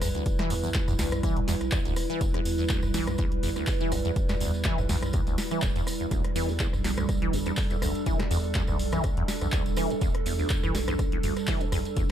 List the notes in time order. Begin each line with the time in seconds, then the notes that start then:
Already playing: G3 E4 B4
0.01 B1 E2, cross-stick, mid tom, open hi-hat, tambourine
0.15 D2, closed hi-hat, tambourine
0.26 E1, kick, closed hi-hat, tambourine
0.39 E3, cross-stick, snare, closed hi-hat
0.50 E2, open hi-hat, tambourine
0.63 E2, tambourine
0.74 kick, snare, clap, closed hi-hat, tambourine
0.88 B1 E2, cross-stick, mid tom, tambourine
0.99 D2, snare, open hi-hat, tambourine
1.11 cross-stick, closed hi-hat, mid tom, tambourine
1.23 E3, kick, cross-stick, closed hi-hat, tambourine
1.37 E2, closed hi-hat
1.48 E2, snare, open hi-hat, tambourine
1.61 B1, cross-stick, closed hi-hat, tambourine
1.72 E2, kick, clap, closed hi-hat, tambourine
1.85 D1 D2, closed hi-hat, tambourine
1.96 E1, cross-stick, open hi-hat, tambourine
2.10 E3, closed hi-hat, tambourine
2.21 E1 E2, kick, closed hi-hat, tambourine
2.34 E2, cross-stick, closed hi-hat
2.45 E2, open hi-hat, tambourine
2.58 E2, tambourine
2.69 D2, kick, clap, closed hi-hat, tambourine
2.82 B1, cross-stick, mid tom, tambourine
2.94 E3, snare, open hi-hat, tambourine
3.07 E2, cross-stick, closed hi-hat, mid tom, tambourine
3.18 E2, kick, cross-stick, closed hi-hat, tambourine
3.32 closed hi-hat
3.43 G1 E2, mid tom, open hi-hat, tambourine
3.56 D2, cross-stick, closed hi-hat, tambourine
3.67 kick, clap, open hi-hat, tambourine
3.80 E3, closed hi-hat, tambourine
3.92 B1 E2, cross-stick, mid tom, open hi-hat, tambourine
4.05 E2, closed hi-hat, tambourine
4.16 E1, kick, closed hi-hat, tambourine
4.29 E2, cross-stick, snare, closed hi-hat, tambourine
4.40 D2 E2, open hi-hat, tambourine
4.54 tambourine
4.64 E3, kick, snare, clap, closed hi-hat, tambourine
4.78 B1 E2, cross-stick, mid tom, tambourine
4.89 E2, snare, open hi-hat, tambourine
5.03 cross-stick, closed hi-hat, mid tom, tambourine
5.13 E2, kick, cross-stick, closed hi-hat, tambourine
5.27 G1 D2, closed hi-hat, tambourine
5.38 snare, open hi-hat, tambourine
5.51 E3, cross-stick, closed hi-hat, tambourine
5.62 D1 E2, kick, clap, closed hi-hat, tambourine
5.76 E2, closed hi-hat, tambourine
5.87 cross-stick, open hi-hat, tambourine
6.00 E2, closed hi-hat, tambourine
6.11 E1 D2 D4 A4, kick, closed hi-hat, tambourine
6.24 cross-stick, closed hi-hat
6.36 E2 E3, open hi-hat, tambourine
6.49 E2, tambourine
6.59 E2, kick, clap, closed hi-hat, tambourine
6.73 B1, cross-stick, mid tom, tambourine
6.84 E2, snare, open hi-hat, tambourine
6.97 D2, cross-stick, closed hi-hat, mid tom, tambourine
7.09 kick, cross-stick, closed hi-hat, tambourine
7.22 E3, closed hi-hat
7.33 G1 E2, mid tom, open hi-hat, tambourine
7.46 E2, cross-stick, closed hi-hat, tambourine
7.57 kick, clap, open hi-hat, tambourine
7.70 E2, closed hi-hat, tambourine
7.82 B1 D2, cross-stick, mid tom, open hi-hat, tambourine
7.95 closed hi-hat, tambourine
8.06 E1 E3, kick, closed hi-hat, tambourine
8.20 E2, cross-stick, snare, closed hi-hat
8.31 E2, open hi-hat, tambourine
8.44 tambourine
8.55 E2, kick, snare, clap, closed hi-hat, tambourine
8.67 B1 D2, cross-stick, mid tom, tambourine
8.79 open hi-hat, tambourine
8.92 E3, cross-stick, closed hi-hat, mid tom, tambourine
9.04 E2, kick, cross-stick, closed hi-hat, tambourine
9.17 E2, closed hi-hat
9.28 snare, open hi-hat, tambourine
9.41 B1 E2, cross-stick, closed hi-hat, tambourine
9.52 D2, kick, clap, closed hi-hat, tambourine
9.66 D1, closed hi-hat, tambourine
9.76 E1 E3, cross-stick, open hi-hat, tambourine
9.90 E2, closed hi-hat, tambourine
10.01 E1 E2, kick, closed hi-hat, tambourine
10.15 cross-stick, closed hi-hat
10.26 E2, open hi-hat, tambourine
10.39 D2, tambourine
10.50 kick, clap, closed hi-hat, tambourine
10.63 B1 E3, cross-stick, mid tom, tambourine
10.75 E2, snare, open hi-hat, tambourine
10.88 E2, cross-stick, closed hi-hat, mid tom, tambourine
10.99 kick, cross-stick, closed hi-hat, tambourine
11.12 E2, closed hi-hat
11.23 G1 D2, mid tom, open hi-hat, tambourine
11.36 cross-stick, closed hi-hat, tambourine
11.47 E3, kick, clap, open hi-hat, tambourine
11.60 E2, closed hi-hat, tambourine
11.72 B1 E2, cross-stick, mid tom, open hi-hat, tambourine
11.85 closed hi-hat, tambourine
11.96 E1 E2, kick, closed hi-hat, tambourine